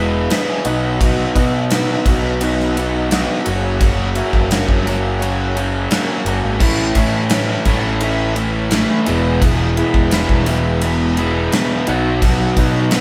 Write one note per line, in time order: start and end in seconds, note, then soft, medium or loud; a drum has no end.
0.00 0.27 E1 medium
0.00 0.30 E2 medium
0.00 0.30 B2 medium
0.00 0.31 E3 medium
0.00 0.31 G#3 medium
0.00 0.32 B3 medium
0.00 0.32 E4 medium
0.00 0.30 D#5 medium
0.30 0.65 E2 medium
0.30 0.65 B2 loud
0.30 0.65 E3 loud
0.30 0.65 G#3 loud
0.30 0.65 B3 loud
0.30 0.65 E4 loud
0.30 0.48 E5 medium
0.30 snare loud
0.30 ride loud
0.49 0.66 G#5 medium
0.65 1.25 B1 loud
0.65 1.00 B2 medium
0.65 1.01 F#3 loud
0.65 1.01 B3 loud
0.65 1.01 D#4 loud
0.65 1.22 F#4 medium
0.65 1.02 F#4 loud
0.65 1.22 B4 medium
0.65 1.22 D#5 loud
0.65 0.99 F#5 medium
0.65 ride medium
1.01 1.36 B2 loud
1.01 1.38 F#3 loud
1.01 1.37 B3 loud
1.01 1.38 D#4 loud
1.01 1.38 F#4 loud
1.01 kick loud
1.01 ride loud
1.35 1.95 B2 loud
1.35 1.71 B2 medium
1.35 1.72 F#3 medium
1.35 1.72 B3 loud
1.35 1.72 D#4 medium
1.35 2.48 F#4 medium
1.35 1.73 F#4 medium
1.35 2.48 B4 medium
1.35 2.48 D#5 loud
1.35 kick medium
1.35 ride medium
1.70 2.06 B2 medium
1.70 2.07 F#3 loud
1.70 2.07 B3 loud
1.70 2.07 D#4 loud
1.70 2.08 F#4 loud
1.70 snare loud
1.70 ride loud
2.06 3.24 B1 medium
2.06 2.40 B2 medium
2.06 2.41 F#3 loud
2.06 2.41 B3 medium
2.06 2.42 D#4 medium
2.06 2.42 F#4 loud
2.06 kick medium
2.06 ride medium
2.41 2.75 B2 medium
2.41 2.76 F#3 medium
2.41 2.76 B3 loud
2.41 2.77 D#4 loud
2.41 2.77 F#4 loud
2.41 ride loud
2.60 snare soft
2.77 3.10 B2 medium
2.77 3.10 F#3 medium
2.77 3.11 B3 medium
2.77 3.11 D#4 loud
2.77 3.11 F#4 medium
2.77 ride medium
3.11 3.44 B2 medium
3.11 3.45 F#3 loud
3.11 3.45 B3 loud
3.11 3.45 D#4 loud
3.11 3.45 F#4 loud
3.11 snare loud
3.11 ride loud
3.45 4.21 F#1 loud
3.45 3.80 F#2 medium
3.45 3.81 C#3 loud
3.45 3.81 F#3 loud
3.45 3.82 A#3 loud
3.45 3.82 C#4 loud
3.45 4.02 F#4 medium
3.45 3.82 F#4 loud
3.45 4.02 A#4 medium
3.45 4.02 C#5 medium
3.45 ride medium
3.81 4.15 F#2 loud
3.81 4.15 C#3 medium
3.81 4.15 F#3 loud
3.81 4.15 A#3 loud
3.81 4.17 C#4 loud
3.81 4.16 F#4 loud
3.81 kick loud
3.81 ride medium
4.15 4.50 F#2 medium
4.15 4.50 C#3 medium
4.15 4.50 F#3 medium
4.15 4.51 A#3 medium
4.15 4.52 C#4 medium
4.15 5.28 F#4 loud
4.15 4.52 F#4 medium
4.15 5.29 A#4 medium
4.15 5.29 E5 loud
4.15 ride medium
4.33 4.63 F#1 medium
4.33 kick medium
4.51 4.85 F#2 medium
4.51 4.86 C#3 loud
4.51 4.86 F#3 medium
4.51 4.87 A#3 medium
4.51 4.87 C#4 loud
4.51 4.87 F#4 loud
4.51 snare loud
4.51 ride loud
4.68 5.87 F#1 medium
4.68 kick medium
4.86 5.20 F#2 medium
4.86 5.21 C#3 medium
4.86 5.21 F#3 medium
4.86 5.21 A#3 loud
4.86 5.22 C#4 loud
4.86 5.22 F#4 loud
4.86 ride medium
5.21 5.55 F#2 loud
5.21 5.55 C#3 medium
5.21 5.55 F#3 loud
5.21 5.56 A#3 loud
5.21 5.56 C#4 loud
5.21 5.57 F#4 loud
5.21 ride loud
5.56 5.90 F#2 medium
5.56 5.91 C#3 medium
5.56 5.91 F#3 medium
5.56 5.91 A#3 medium
5.56 5.92 C#4 loud
5.56 5.92 F#4 medium
5.56 ride medium
5.91 6.25 F#2 loud
5.91 6.25 C#3 medium
5.91 6.26 F#3 medium
5.91 6.26 A#3 loud
5.91 6.27 C#4 loud
5.91 6.27 F#4 loud
5.91 snare loud
5.91 ride loud
6.24 6.42 F#1 medium
6.24 6.60 F#2 medium
6.24 6.60 C#3 medium
6.24 6.60 F#3 medium
6.24 6.60 A#3 medium
6.24 6.60 C#4 medium
6.24 6.54 F#4 medium
6.24 6.61 F#4 medium
6.24 6.54 A#4 medium
6.24 6.54 C#5 medium
6.24 ride medium
6.44 6.60 G#1 medium
6.60 6.91 A1 medium
6.60 6.95 A2 loud
6.60 6.96 E3 loud
6.60 6.96 A3 loud
6.60 6.96 C#4 loud
6.60 6.89 E4 medium
6.60 6.97 E4 loud
6.60 6.89 A4 medium
6.60 6.90 C#5 medium
6.60 kick loud
6.60 crash loud
6.95 7.55 A2 medium
6.95 7.30 A2 medium
6.95 7.32 E3 medium
6.95 7.31 A3 medium
6.95 7.31 C#4 medium
6.95 8.08 E4 medium
6.95 7.32 E4 medium
6.95 8.09 A4 medium
6.95 8.09 C#5 loud
6.95 kick medium
6.95 ride medium
7.30 7.65 A2 loud
7.30 7.65 E3 loud
7.30 7.66 A3 loud
7.30 7.66 C#4 loud
7.30 7.67 E4 loud
7.30 snare loud
7.30 ride loud
7.65 8.84 A1 medium
7.65 8.00 A2 loud
7.65 8.00 E3 loud
7.65 8.01 A3 loud
7.65 8.02 C#4 loud
7.65 8.02 E4 loud
7.65 kick medium
7.65 ride medium
8.01 8.35 A2 loud
8.01 8.35 E3 loud
8.01 8.36 A3 medium
8.01 8.36 C#4 loud
8.01 8.36 E4 loud
8.01 ride loud
8.36 8.70 A2 medium
8.36 8.71 E3 medium
8.36 8.71 A3 medium
8.36 8.72 C#4 medium
8.36 8.72 E4 loud
8.36 ride medium
8.71 9.05 A2 loud
8.71 9.05 E3 medium
8.71 9.05 A3 loud
8.71 9.05 C#4 loud
8.71 9.06 E4 loud
8.71 snare loud
8.71 ride loud
9.06 9.81 E1 loud
9.06 9.41 E2 medium
9.06 9.41 B2 medium
9.06 9.42 E3 loud
9.06 9.42 G#3 loud
9.06 9.44 B3 loud
9.06 9.63 E4 medium
9.06 9.43 E4 loud
9.06 9.63 G#4 medium
9.06 9.63 B4 loud
9.06 ride medium
9.42 9.76 E2 loud
9.42 9.76 B2 medium
9.42 9.77 E3 loud
9.42 9.77 G#3 loud
9.42 9.79 B3 loud
9.42 9.78 E4 loud
9.42 kick loud
9.42 ride loud
9.77 10.10 E2 medium
9.77 10.11 B2 medium
9.77 10.11 E3 medium
9.77 10.12 G#3 medium
9.77 10.13 B3 medium
9.77 10.89 E4 loud
9.77 10.12 E4 medium
9.77 10.90 G#4 medium
9.77 10.90 B4 loud
9.77 ride medium
9.94 10.24 E1 medium
9.94 kick medium
10.11 10.46 E2 medium
10.11 10.47 B2 medium
10.11 10.47 E3 loud
10.11 10.47 G#3 loud
10.11 10.48 B3 loud
10.11 10.47 E4 loud
10.11 snare loud
10.11 ride loud
10.29 11.47 E1 loud
10.29 kick medium
10.46 10.81 E2 medium
10.46 10.82 B2 medium
10.46 10.82 E3 loud
10.46 10.83 G#3 loud
10.46 10.83 B3 loud
10.46 10.83 E4 loud
10.46 ride medium
10.81 11.16 E2 medium
10.81 11.16 B2 loud
10.81 11.17 E3 loud
10.81 11.18 G#3 loud
10.81 11.19 B3 loud
10.81 11.18 E4 loud
10.81 ride loud
11.17 11.53 E2 medium
11.17 11.53 B2 medium
11.17 11.53 E3 loud
11.17 11.53 G#3 medium
11.17 11.55 B3 medium
11.17 11.54 E4 medium
11.17 ride medium
11.52 11.86 E2 medium
11.52 11.86 B2 loud
11.52 11.86 E3 loud
11.52 11.86 G#3 loud
11.52 11.88 B3 loud
11.52 11.87 E4 loud
11.52 snare loud
11.52 ride loud
11.87 12.47 B1 loud
11.87 12.21 B2 medium
11.87 12.22 F#3 medium
11.87 12.23 B3 loud
11.87 12.43 D#4 medium
11.87 12.22 D#4 loud
11.87 12.43 F#4 medium
11.87 12.23 F#4 loud
11.87 12.44 B4 medium
11.87 ride medium
12.22 12.56 B2 loud
12.22 12.57 F#3 loud
12.22 12.58 B3 loud
12.22 12.57 D#4 loud
12.22 12.58 F#4 loud
12.22 kick loud
12.22 ride loud
12.56 13.01 B2 medium
12.56 12.91 B2 medium
12.56 12.91 F#3 medium
12.56 12.93 B3 medium
12.56 13.01 D#4 medium
12.56 12.93 D#4 medium
12.56 13.01 F#4 medium
12.56 12.93 F#4 medium
12.56 13.01 B4 loud
12.56 kick medium
12.56 ride medium
12.91 13.01 B2 medium
12.91 13.01 F#3 loud
12.91 13.01 B3 loud
12.91 13.01 D#4 loud
12.91 13.01 F#4 loud
12.91 snare loud
12.91 ride loud